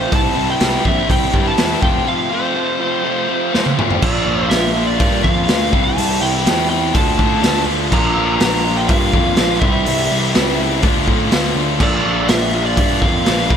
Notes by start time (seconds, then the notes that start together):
Already playing: F2 C3 F3 A3 C4 F4 C5
0.11 C2 C3 E3 G3 C4 E4 A5, kick, open hi-hat
0.34 C2 C3 E3 G3 C4 E4
0.51 G5
0.59 C2 C3 E3 G3 C4 E4, snare, open hi-hat
0.84 A#1 C3 E3 G3 C4 E4 E5, kick
1.08 C2 C3 E3 G3 C4 E4 G5, kick, open hi-hat
1.32 G2 C3 E3 G3 C4 E4, kick
1.48 A5
1.57 E2 C3 E3 G3 C4 E4, snare, open hi-hat
1.81 F1 F2 C3 F3 A3 C4 F4 G5, kick
2.06 F2 C3 F3 A3 C4 F4 F5
2.29 F2 C3 F3 A3 C4 F4
2.33 C5
2.54 F2 C3 F3 A3 C4 F4
2.79 F2 C3 F3 A3 C4 F4
3.04 F2 C3 F3 A3 C4 F4
3.28 F2 C3 F3 A3 C4 F4
3.53 F2 C3 F3 A3 C4 F4, snare
3.66 high tom
3.78 F2 C3 F3 A3 C4 F4, mid tom
3.90 floor tom
4.01 A#1 A#2 F3 A#3 D4 F4 D5, kick, crash
4.25 A#1 A#3 D4 F4
4.48 A#1 F3 A#3 D4 F4 E5, snare, open hi-hat
4.74 A#3 D4 F4
4.78 A#2 F3
4.87 D5
4.99 G2 A#2 F3 A#3 D4 F4, kick, open hi-hat
5.24 F2 A#3 D4 F4 F5, kick
5.48 D2 F3 A#3 D4 F4, snare, open hi-hat
5.71 C2 C3 E3 G3 C4 E4, kick
5.75 C3
5.84 A5
5.97 C2 C3 E3 G3 C4 E4, open hi-hat
6.21 C2 G3 C4 E4 G5
6.44 E2 C3 E3 G3 C4 E4, snare, open hi-hat
6.69 G3 C4 E4 G5
6.93 D2 D3 A3 D4 F4 A5, kick, open hi-hat
7.18 A2 A3 D4 F4, kick
7.42 D2 D3 A3 D4 F4, snare, open hi-hat
7.66 D2 D3 A3 D4 F4
7.91 A#1 A#2 D3 A#3 D4 F4 A#5, kick, crash
8.16 A#1 A#3 D4 F4
8.40 A#1 D3 A#3 D4 F4 A#5, snare, open hi-hat
8.65 A#2 D3 A#3 D4 F4
8.77 G5
8.88 G2 A#2 D3 A#3 D4 F4 F5, kick, open hi-hat
9.13 F2 A#3 D4 F4, kick
9.37 A#1 D3 A#3 D4 F4, snare, open hi-hat
9.60 C2 E3 G3 C4 E4 E5, kick
9.64 C3
9.85 C2 C3 E3 G3 C4 E4, open hi-hat
10.10 C2 G3 C4 E4
10.33 C#2 C3 E3 G3 C4 E4, snare, open hi-hat
10.58 G3 C4 E4
10.82 D2 D3 A3 D4 F4, kick, open hi-hat
11.07 A2 A3 D4 F4, kick
11.31 D2 D3 A3 D4 F4, snare, open hi-hat
11.55 D2 D3 A3 D4 F4
11.79 A#1 A#2 D3 A#3 D4 F4, kick, crash
11.83 D5
12.03 A#1 A#3 D4 F4
12.27 A#1 D3 A#3 D4 F4 E5, snare, open hi-hat
12.50 A#3 D4 F4
12.55 A#2 D3
12.66 D5
12.76 G2 A#2 D3 A#3 D4 F4, kick, open hi-hat
12.98 A#3 D4 F4 F5, kick
13.02 F2
13.23 A#1 D3 A#3 D4 F4, open hi-hat
13.27 snare
13.39 snare
13.46 C3 E3 G3 C4 E4, kick
13.51 C2 E4